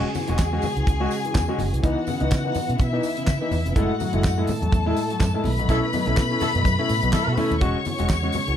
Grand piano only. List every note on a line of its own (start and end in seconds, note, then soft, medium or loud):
0.15 0.29 E3 medium
0.28 0.40 G#3 medium
0.28 0.40 C#4 medium
0.28 0.40 F#4 medium
0.52 0.64 G#3 medium
0.52 0.64 C#4 medium
0.52 0.64 F#4 medium
0.77 0.88 E3 medium
1.00 1.12 G#3 medium
1.00 1.12 C#4 medium
1.00 1.12 F#4 medium
1.25 1.36 E3 medium
1.48 1.60 G#3 medium
1.48 1.60 C#4 medium
1.48 1.61 F#4 medium
1.73 1.81 E3 medium
1.83 1.97 E3 medium
1.83 1.97 B3 medium
1.83 1.98 D#4 medium
2.07 2.22 C#3 medium
2.20 2.32 E3 medium
2.20 2.33 B3 medium
2.20 2.32 D#4 medium
2.44 2.56 E3 medium
2.44 2.57 B3 medium
2.44 2.57 D#4 medium
2.69 2.81 C#3 medium
2.93 3.05 E3 medium
2.93 3.05 B3 medium
2.93 3.05 D#4 medium
3.17 3.29 C#3 medium
3.41 3.53 E3 medium
3.41 3.53 B3 medium
3.41 3.53 D#4 medium
3.65 3.77 C#3 medium
3.76 3.90 G#3 medium
3.76 3.90 A3 medium
3.76 3.91 E4 medium
4.00 4.14 F#3 medium
4.13 4.25 G#3 medium
4.13 4.25 A3 medium
4.13 4.25 E4 medium
4.38 4.49 G#3 medium
4.38 4.49 A3 medium
4.38 4.50 E4 medium
4.62 4.73 F#3 medium
4.86 4.98 G#3 medium
4.86 4.98 A3 medium
4.86 4.98 E4 medium
5.11 5.22 F#3 medium
5.34 5.46 G#3 medium
5.34 5.46 A3 medium
5.34 5.46 E4 medium
5.59 5.70 B2 medium
5.59 5.70 F#3 medium
5.69 5.83 A3 medium
5.69 5.83 C#4 medium
5.69 5.84 E4 medium
5.93 6.07 B2 medium
5.93 6.07 F#3 medium
6.06 6.18 A3 medium
6.06 6.18 C#4 medium
6.06 6.18 E4 medium
6.31 6.42 A3 medium
6.31 6.43 C#4 medium
6.31 6.43 E4 medium
6.55 6.66 B2 medium
6.55 6.66 F#3 medium
6.79 6.90 A3 medium
6.79 6.90 C#4 medium
6.79 6.91 E4 medium
7.03 7.15 B2 medium
7.03 7.15 F#3 medium
7.37 7.52 A3 loud
7.37 7.52 C#4 medium
7.37 7.52 E4 loud
7.61 7.76 G#3 medium
7.61 7.76 C#4 medium
7.61 7.76 F#4 loud
7.86 8.00 E3 medium
7.99 8.11 G#3 medium
7.99 8.11 C#4 medium
7.99 8.11 F#4 medium
8.23 8.35 G#3 medium
8.23 8.35 C#4 medium
8.23 8.35 F#4 medium
8.48 8.57 E3 medium